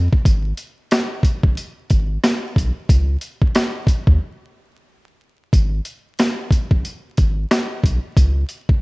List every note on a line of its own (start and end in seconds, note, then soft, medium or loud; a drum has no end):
0.13 kick medium
0.25 0.53 G#1 loud
0.25 kick loud
0.25 closed hi-hat medium
0.57 closed hi-hat medium
0.91 cross-stick medium
0.91 snare loud
0.91 closed hi-hat loud
1.23 kick medium
1.23 closed hi-hat medium
1.43 1.55 A#1 loud
1.43 kick loud
1.57 closed hi-hat medium
1.90 2.18 G#1 medium
1.90 kick medium
1.90 closed hi-hat medium
2.24 cross-stick loud
2.24 snare loud
2.24 closed hi-hat medium
2.56 2.72 B1 medium
2.56 kick loud
2.56 closed hi-hat medium
2.89 3.17 C#2 loud
2.89 kick loud
2.89 closed hi-hat loud
3.21 closed hi-hat medium
3.42 kick loud
3.55 cross-stick medium
3.55 snare loud
3.55 closed hi-hat loud
3.87 kick medium
3.87 closed hi-hat medium
4.07 4.19 D#2 medium
4.07 kick loud
5.53 5.80 G#1 loud
5.53 kick loud
5.53 closed hi-hat medium
5.85 closed hi-hat medium
6.19 cross-stick medium
6.19 snare loud
6.19 closed hi-hat loud
6.51 kick medium
6.51 closed hi-hat medium
6.71 6.83 A#1 medium
6.71 kick loud
6.85 closed hi-hat medium
7.17 7.45 G#1 medium
7.17 kick medium
7.17 closed hi-hat medium
7.51 cross-stick loud
7.51 snare loud
7.51 closed hi-hat medium
7.84 7.99 B1 loud
7.84 kick medium
7.84 closed hi-hat medium
8.17 8.44 C#2 loud
8.17 kick loud
8.17 closed hi-hat medium
8.49 closed hi-hat medium
8.69 kick loud